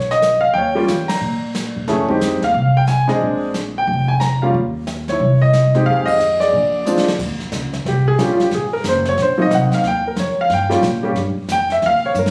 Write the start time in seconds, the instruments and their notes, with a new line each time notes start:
Already playing: upright bass B1, grand piano C#5
0.00 snare
0.11 grand piano D#5, snare
0.22 snare, hi-hat pedal
0.41 grand piano F5, muted upright bass stroke
0.54 upright bass D#2, grand piano G5, brush sweep, kick
0.58 grand piano C#5
0.75 grand piano G3 A#3 C#4 F4
0.88 upright bass E2, snare, hi-hat pedal
1.08 grand piano A#5, snare, ride
1.21 upright bass A#2, brush sweep
1.55 snare, hi-hat pedal
1.76 upright bass E2
1.88 upright bass F2, grand piano A3 C#4 E4 G#4, brush sweep, kick, snare
2.08 grand piano G#3 C4 D#4 G4, kick
2.21 snare, hi-hat pedal
2.42 upright bass D#2, grand piano F5, snare
2.54 upright bass C2, brush sweep, kick
2.77 grand piano G5
2.87 grand piano G#5, snare, hi-hat pedal
3.08 upright bass C2, grand piano G#3 C4 D4 G#4 D#5, snare
3.21 upright bass A#1, brush sweep, kick
3.54 snare, hi-hat pedal
3.78 grand piano G5
3.87 upright bass F1, brush sweep, kick
4.08 grand piano G#5
4.20 grand piano A#5, snare, hi-hat pedal
4.42 grand piano G3 A#3 C#4 F4 F5
4.54 upright bass D#2, brush sweep, kick
4.87 snare, hi-hat pedal
5.08 grand piano E4 C#5, snare
5.20 upright bass C2, brush sweep, kick
5.42 grand piano D#5
5.53 snare, hi-hat pedal
5.74 grand piano G#3 C4 D#4 G4, snare
5.86 upright bass F2, grand piano F5, brush sweep, kick
5.90 grand piano G#4
6.06 grand piano D#5, kick, ride
6.20 hi-hat pedal
6.40 grand piano G#4 D5, snare
6.53 upright bass A#1, brush sweep, kick
6.86 grand piano G#3 C4 D4 F4, hi-hat pedal
6.97 snare
7.08 snare
7.19 upright bass D#2, brush sweep, kick, snare, crash
7.40 muted upright bass stroke, snare
7.52 upright bass C#2, snare, hi-hat pedal
7.73 snare
7.85 upright bass C2, grand piano G4, brush sweep, kick, snare
8.08 grand piano G#4
8.18 upright bass A#1, grand piano G3 A#3 C#4 F4 G4, kick, snare, hi-hat pedal
8.33 grand piano F4
8.40 grand piano G4, snare
8.51 upright bass G#1, grand piano G#4, brush sweep, kick, snare
8.73 grand piano A#4
8.84 upright bass F#1, kick, snare, hi-hat pedal
8.89 grand piano C5
9.05 grand piano C#5, snare
9.17 upright bass A#1, brush sweep, kick, snare
9.22 grand piano C5
9.37 grand piano F#3 A#3 C4 D#4
9.42 grand piano D#5
9.50 upright bass C2, kick, snare, hi-hat pedal
9.54 grand piano F#5
9.70 grand piano F5, muted upright bass stroke, snare
9.84 upright bass D#2, grand piano G5, brush sweep, kick, snare
10.07 grand piano A#4
10.16 upright bass F2, grand piano C#5, kick, snare, hi-hat pedal
10.41 grand piano F5
10.50 upright bass G2, grand piano G5, brush sweep, kick, snare
10.69 grand piano G3 A#3 C#4 F4, snare
10.82 upright bass A#2, kick, snare, hi-hat pedal
11.03 grand piano G3 A#3 C#4 G4
11.15 upright bass G2, brush sweep, kick, snare
11.36 muted upright bass stroke
11.48 upright bass F2, grand piano G5, kick, snare, hi-hat pedal
11.70 grand piano E5, snare
11.82 upright bass D#2, brush sweep, kick, snare
11.86 grand piano F5
12.03 grand piano C#5, muted upright bass stroke
12.14 upright bass G2, hi-hat pedal
12.19 grand piano A#4
12.26 snare